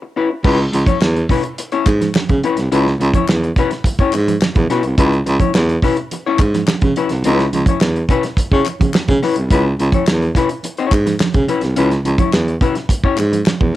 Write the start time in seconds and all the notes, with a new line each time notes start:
0.02 muted hollow-body jazz guitar stroke
0.17 C#4 E4 B4
0.31 muted hollow-body jazz guitar stroke
0.44 C#2 C#4 E4 B4, kick, crash
0.73 C#2, muted hollow-body jazz guitar stroke, closed hi-hat, muted conga
0.87 C#4 E4 C#5, kick, closed hi-hat, high conga
1.01 E2, snare, clap, muted conga
1.16 muted hollow-body jazz guitar stroke, closed hi-hat
1.29 C#4 E4 B4, kick, snare, open hi-hat, muted conga, low conga
1.43 muted hollow-body jazz guitar stroke, closed hi-hat
1.58 muted hollow-body jazz guitar stroke, closed hi-hat
1.72 C#4 E4 C#5, closed hi-hat
1.86 G#2, muted hollow-body jazz guitar stroke, kick, clap, closed hi-hat, muted conga
2.01 muted hollow-body jazz guitar stroke, snare, closed hi-hat, high conga
2.15 snare, clap, muted conga, high conga
2.29 C#3, muted hollow-body jazz guitar stroke, kick, closed hi-hat, high conga, low conga
2.43 C#4 E4 B4, closed hi-hat, muted conga
2.57 C2, muted hollow-body jazz guitar stroke, snare, closed hi-hat
2.72 C#2 C#4 E4 B4, closed hi-hat
2.87 snare
3.00 C#2, muted hollow-body jazz guitar stroke, closed hi-hat, muted conga
3.13 C#4 E4 C#5, kick, closed hi-hat, high conga
3.28 E2, snare, clap
3.43 muted hollow-body jazz guitar stroke, closed hi-hat
3.56 C#4 E4 B4, kick, closed hi-hat, muted conga, low conga
3.71 muted hollow-body jazz guitar stroke, snare, closed hi-hat
3.84 muted hollow-body jazz guitar stroke, kick, closed hi-hat, muted conga
3.99 C#4 E4 C#5, kick, closed hi-hat
4.13 G#2, muted hollow-body jazz guitar stroke, clap, closed hi-hat, muted conga
4.28 muted hollow-body jazz guitar stroke, closed hi-hat, high conga
4.41 snare, clap, high conga
4.55 E2, muted hollow-body jazz guitar stroke, kick, closed hi-hat, high conga, low conga
4.70 B2 C#4 E4 B4, snare, closed hi-hat, muted conga
4.83 C2, muted hollow-body jazz guitar stroke, closed hi-hat
4.98 C#2 C#4 E4 B4, kick, closed hi-hat, muted conga
5.13 closed hi-hat
5.26 C#2, muted hollow-body jazz guitar stroke, closed hi-hat, muted conga
5.40 C#4 E4 C#5, kick, closed hi-hat, high conga
5.54 E2, snare, clap
5.69 muted hollow-body jazz guitar stroke, closed hi-hat
5.82 C#4 E4 B4, kick, snare, open hi-hat, low conga
5.97 muted hollow-body jazz guitar stroke, closed hi-hat
6.11 muted hollow-body jazz guitar stroke, closed hi-hat, muted conga
6.26 C#4 E4 C#5
6.39 G#2, muted hollow-body jazz guitar stroke, kick, clap, closed hi-hat, muted conga
6.54 muted hollow-body jazz guitar stroke, snare, closed hi-hat, high conga
6.67 snare, clap, muted conga, high conga
6.81 C#3, muted hollow-body jazz guitar stroke, kick, closed hi-hat, high conga, low conga
6.96 C#4 E4 B4, closed hi-hat
7.09 C2, muted hollow-body jazz guitar stroke, snare, closed hi-hat
7.24 C#2 C#4 E4 B4, closed hi-hat, muted conga
7.39 snare, closed hi-hat
7.53 C#2, muted hollow-body jazz guitar stroke, closed hi-hat, muted conga, high conga
7.66 C#4 E4 C#5, kick, closed hi-hat, high conga
7.81 E2, snare, clap, muted conga
7.96 muted hollow-body jazz guitar stroke, closed hi-hat
8.09 C#4 E4 B4, kick, closed hi-hat, low conga
8.23 muted hollow-body jazz guitar stroke, snare, closed hi-hat
8.37 muted hollow-body jazz guitar stroke, kick, closed hi-hat, muted conga
8.52 C#3 C#4 E4 C#5, kick
8.65 muted hollow-body jazz guitar stroke, clap, closed hi-hat, muted conga
8.80 C#3, muted hollow-body jazz guitar stroke, kick, closed hi-hat, high conga
8.94 snare, clap, muted conga, high conga
9.08 C#3, muted hollow-body jazz guitar stroke, kick, closed hi-hat, high conga, low conga
9.23 C#4 E4 B4, snare, open hi-hat, muted conga
9.36 C2, muted hollow-body jazz guitar stroke, closed hi-hat
9.50 C#2 C#4 E4 B4, kick, closed hi-hat
9.79 C#2, muted hollow-body jazz guitar stroke, closed hi-hat
9.92 C#4 E4 C#5, kick, closed hi-hat, high conga
10.07 E2, snare, clap
10.22 muted hollow-body jazz guitar stroke, closed hi-hat
10.35 C#4 E4 B4, kick, snare, closed hi-hat, muted conga, low conga
10.49 muted hollow-body jazz guitar stroke, closed hi-hat
10.63 muted hollow-body jazz guitar stroke, closed hi-hat, muted conga
10.77 C#4 E4 C#5, closed hi-hat
10.91 G#2, muted hollow-body jazz guitar stroke, kick, clap, closed hi-hat
11.06 muted hollow-body jazz guitar stroke, snare, closed hi-hat, high conga
11.20 snare, clap, muted conga, high conga
11.34 C#3, muted hollow-body jazz guitar stroke, kick, closed hi-hat, high conga, low conga
11.48 C#4 E4 B4, closed hi-hat, muted conga
11.61 C2, muted hollow-body jazz guitar stroke, snare, closed hi-hat
11.76 C#2 C#4 E4 B4, closed hi-hat, muted conga
11.91 snare, closed hi-hat
12.05 C#2, muted hollow-body jazz guitar stroke, closed hi-hat, muted conga
12.18 C#4 E4 C#5, kick, closed hi-hat, high conga
12.33 E2, snare, clap
12.48 muted hollow-body jazz guitar stroke, closed hi-hat
12.61 C#4 E4 B4, kick, closed hi-hat, muted conga, low conga
12.75 muted hollow-body jazz guitar stroke, snare, closed hi-hat
12.89 muted hollow-body jazz guitar stroke, kick, closed hi-hat, muted conga
13.04 C#4 E4 C#5, kick
13.17 G#2, muted hollow-body jazz guitar stroke, clap, closed hi-hat, muted conga
13.32 muted hollow-body jazz guitar stroke, closed hi-hat, high conga
13.46 snare, clap, high conga
13.61 E2, muted hollow-body jazz guitar stroke, kick, high conga, low conga